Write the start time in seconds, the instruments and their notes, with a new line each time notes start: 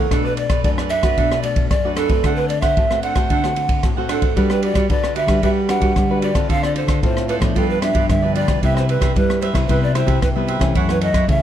Already playing: pan flute A4
0.00 cavaquinho A#4
0.11 nylon-string guitar B2 A3 D4 F#4, cavaquinho D4 A4 B4 D5, kick, cross-stick, ride
0.25 cavaquinho A4 B4 D5, pan flute B4
0.37 pan flute D5, muted cavaquinho stroke, ride
0.50 cavaquinho A4 B4 D5, kick, cross-stick, ride
0.64 nylon-string guitar F#2 A3 D4 F#4, pan flute D5, kick, ride
0.78 cavaquinho A4 B4 D5, cross-stick
0.90 cavaquinho D4 A4 B4 D5, pan flute E5, ride
1.03 nylon-string guitar A3 D4 F#4, cavaquinho A4 B4 D5, kick, cross-stick, ride
1.18 nylon-string guitar B2, cavaquinho D4 A4 B4 D5, kick, ride
1.31 cavaquinho A4 B4 D5, cross-stick
1.42 nylon-string guitar A3 D4 F#4, pan flute D5, muted cavaquinho stroke, ride
1.56 kick, ride
1.69 nylon-string guitar F#2, pan flute D5, kick, cross-stick, ride
1.84 nylon-string guitar A3 D4 F#4, cavaquinho A4 B4 D5
1.95 cavaquinho D4 A4 B4, pan flute A4, cross-stick, ride
1.99 cavaquinho D5
2.09 nylon-string guitar A3 C4 F#4, cavaquinho A4 B4 D5, kick, ride
2.24 nylon-string guitar D3, cavaquinho D4 A4 C5 F#5, kick, cross-stick, ride
2.36 pan flute B4, cavaquinho C5 F#5
2.40 cavaquinho A4
2.48 pan flute D5, muted cavaquinho stroke, ride
2.61 cavaquinho A4 C5 F#5, pan flute E5, kick, cross-stick, ride
2.77 nylon-string guitar A2 A3 C4 F#4, kick, ride
2.91 nylon-string guitar A3 C4 F#4, cavaquinho A4 C5 F#5, cross-stick
3.02 cavaquinho D4 A4 C5 F#5, pan flute F#5, ride
3.16 nylon-string guitar A3 C4 F#4, cavaquinho A4 C5 F#5, kick, cross-stick, ride
3.30 nylon-string guitar D3, cavaquinho D4 A4 C5 F#5, kick, ride
3.44 nylon-string guitar A3 C4 F#4, cavaquinho A4 C5 F#5, cross-stick
3.56 nylon-string guitar A3 C4 F#4, muted cavaquinho stroke, ride
3.69 kick, ride
3.83 nylon-string guitar A2 A3 C4 F#4, kick, cross-stick, ride
3.97 nylon-string guitar A3 C4 F#4, cavaquinho A4 C5 F#5
4.09 cavaquinho D4 A4 C5 F#5, pan flute A4, cross-stick, ride
4.21 cavaquinho A4 C5 F#5, kick, ride
4.36 nylon-string guitar G3 D4 F#4 B4, cavaquinho F#4 G4 B4 D5, kick, ride
4.50 cavaquinho G4 B4 D5, pan flute B4, cross-stick
4.62 cavaquinho F#4 G4 B4 D5, pan flute D5, ride
4.74 nylon-string guitar G3, cavaquinho F#4 G4 B4 D5, kick, cross-stick, ride
4.90 nylon-string guitar D3 D4 F#4 B4, pan flute D5, kick, ride
5.04 cross-stick
5.15 cavaquinho F#4 G4 B4 D5, pan flute E5, ride
5.27 nylon-string guitar G3 D4 F#4 B4, cavaquinho G4 B4 D5, kick, cross-stick, ride
5.42 nylon-string guitar G3 D4 F#4 B4, cavaquinho F#4 G4 B4 D5, pan flute E5, kick, ride
5.69 nylon-string guitar D4 F#4 B4, cavaquinho F#4 G4 B4 D5, pan flute F#5, cross-stick, ride
5.80 nylon-string guitar G3, cavaquinho F#4 G4 B4 D5, kick, ride
5.96 nylon-string guitar D3 G3, kick, cross-stick, ride
6.10 nylon-string guitar D4 F#4 B4, cavaquinho G4 B4 D5
6.22 cavaquinho F#4 G4 B4 D5, pan flute D5, ride
6.34 nylon-string guitar D3 C4 F4 A4, cavaquinho G4 B4 D5, kick, cross-stick, ride
6.49 nylon-string guitar D3, cavaquinho F4 A4 C5 D5, pan flute F5, kick, ride
6.63 cavaquinho A4 C5 D5, pan flute D5, cross-stick
6.75 cavaquinho F4 A4 C5 D5, pan flute C5, ride
6.87 nylon-string guitar D3, cavaquinho F4 A4 C5 D5, kick, cross-stick, ride
7.02 nylon-string guitar A2 C4 F4 A4, pan flute C5, kick, ride
7.17 cross-stick
7.28 cavaquinho F4 A4 C5 D5, pan flute B4, ride
7.40 nylon-string guitar A2 F3 B3 D4, cavaquinho A4 C5 D5, kick, cross-stick, ride
7.56 nylon-string guitar G2, cavaquinho F4 G4 B4 D5, pan flute A4, kick, ride
7.70 pan flute B4
7.82 nylon-string guitar F3 B3 D4, cavaquinho F4 G4 B4 D5, pan flute E5, cross-stick, ride
7.93 nylon-string guitar G2, cavaquinho F4 G4 B4 D5, kick, ride
8.09 nylon-string guitar G2 D3, pan flute E5, kick, cross-stick, ride
8.22 nylon-string guitar F3 B3 D4, cavaquinho G4 B4 D5
8.35 cavaquinho F4 G4 B4 D5, pan flute D5, ride
8.47 cavaquinho G4 B4 D5, kick, cross-stick, ride
8.63 nylon-string guitar C3 G3 B3 E4, cavaquinho G4 B4 C5 E5, pan flute E5, kick, ride
8.76 cavaquinho B4 C5 E5, pan flute C5, cross-stick
8.88 cavaquinho G4 B4 C5 E5, pan flute B4, ride
9.00 nylon-string guitar C3, cavaquinho G4 B4 C5 E5, kick, cross-stick, ride
9.16 nylon-string guitar G2 G3 B3 E4, pan flute B4, kick, ride
9.30 cross-stick
9.41 cavaquinho G4 B4 C5 E5, pan flute C5, ride
9.53 nylon-string guitar C3 G3 B3 E4, cavaquinho B4 C5 E5, kick, cross-stick, ride
9.68 nylon-string guitar C3 G3 B3 E4, cavaquinho G4 B4 C5 E5, pan flute B4, kick, ride
9.83 pan flute D5
9.94 nylon-string guitar G3 B3 E4, cavaquinho G4 B4 C5 E5, pan flute C5, cross-stick, ride
10.06 nylon-string guitar C3, cavaquinho G4 B4 C5 E5, kick, ride
10.22 nylon-string guitar G2 C3, pan flute B4, kick, cross-stick, ride
10.36 nylon-string guitar G3 B3 E4, cavaquinho B4 C5 E5
10.47 cavaquinho G4 B4 C5 E5, ride
10.59 nylon-string guitar C3 E3 A3 C#4, cavaquinho B4 C5 E5, kick, cross-stick, ride
10.75 nylon-string guitar F#2, cavaquinho E4 A4 C#5 F#5, kick, ride
10.89 cavaquinho A4 C#5 F#5, pan flute B4, cross-stick
11.01 cavaquinho E4 A4 C#5 F#5, pan flute D#5, ride
11.13 nylon-string guitar F#2, cavaquinho E4 A4 C#5 F#5, kick, cross-stick, ride
11.28 nylon-string guitar C#3 E3 A3 C#4, pan flute E5, kick, ride